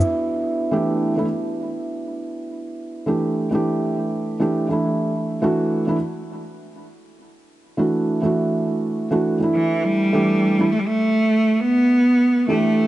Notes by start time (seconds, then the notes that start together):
0.01 shaker
0.71 E3 A3 D4 G4
1.16 E3 A3 D4 E4
3.06 E3 A3 D4 G4
3.51 E3 A3 D4 G4
4.40 E3 A3 D4 G4
4.68 E3 A3 D4
4.72 E4
5.42 E3 A3 D4 F#4
5.87 E3 A3 D4 E4
7.77 E3 A3 D4 F#4
8.22 E3 A3 D4 F#4
9.11 E3 A3 D4 F#4
9.40 E3 A3 D4 E4
9.55 E3
9.84 G3
10.13 E3 A3 D4 G4
10.58 E3 A3 D4 E4
10.72 A3
10.79 G3
10.87 A3
11.60 B3
12.48 E3 A3 D4 G4